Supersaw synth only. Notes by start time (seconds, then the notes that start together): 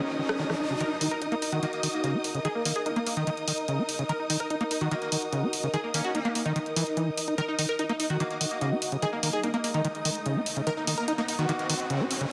Already playing: C#4
0.81 A#4
0.91 D#4
1.01 D#4
1.11 A#4
1.22 D#4
1.32 D#4
1.42 D#4
1.52 F#4
2.45 G#4
2.55 A#3
2.65 A#3
2.76 G#4
2.86 A#3
2.96 A#3
3.07 A#3
3.17 D#4
4.09 A#4
4.20 D#4
4.30 D#4
4.40 A#4
4.50 D#4
4.61 D#4
4.71 D#4
4.81 F#4
5.74 G#4
5.84 A#3
5.94 A#3
6.04 F#4
6.15 A#3
6.25 A#3
6.35 A#3
6.46 D#4
7.38 A#4
7.48 D#4
7.59 D#4
7.69 A#4
7.79 D#4
7.89 D#4
8.00 D#4
8.10 F#4
9.02 G#4
9.13 A#3
9.23 A#3
9.33 G#4
9.43 A#3
9.54 A#3
9.64 A#3
9.74 D#4
10.67 A#4
10.77 D#4
10.87 D#4
10.98 A#4
11.08 D#4
11.18 D#4
11.28 D#4
11.39 F#4